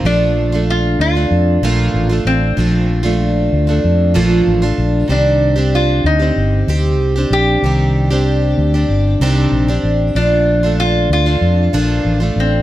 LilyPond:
<<
  \new Staff \with { instrumentName = "Resonator guitar played with a steel bar" } { \time 4/4 \key bes \major \tempo 4 = 95 d'4 f'8 f'2 c'8~ | c'2~ c'8 r4. | d'4 f'8 ees'2 g'8~ | g'2~ g'8 r4. |
d'4 f'8 f'2 c'8 | }
  \new Staff \with { instrumentName = "Twelve-string acoustic guitar" } { \time 4/4 \key bes \major <f a d' f'>8. <a d' f'>4 <a d' f'>8. <bes, f a d' f'>8. <a d' f'>8. | <f a d' f'>8. <a d' f'>4 <a d' f'>8. <bes, f a d' f'>8. <a d' f'>8. | <ees c' d' g'>8. <c' d' g'>4 <c' g'>8. <c c' g'>8. <c' d' g'>8. | <ees c' d' g'>8. <c' d' g'>4 <c' d' g'>8. <c ees c' d' g'>8. <c' d' g'>8. |
<f a d' f'>8. <a d' f'>4 <a d' f'>8. <bes, f a d' f'>8. <a d' f'>8. | }
  \new Staff \with { instrumentName = "Fretless electric bass" } { \clef bass \time 4/4 \key bes \major bes,,4. d,8 f,8 bes,,8 a,,8 a,,8 | bes,,4. d,8 f,8 bes,,8 a,,8 bes,,8 | c,4. d,8 g,,8 d,8 c,8 bes,,8 | c,4. d,8 g,,8 c,8 bes,,8 a,,8 |
bes,,4. d,8 f,8 bes,,8 a,,8 a,,8 | }
>>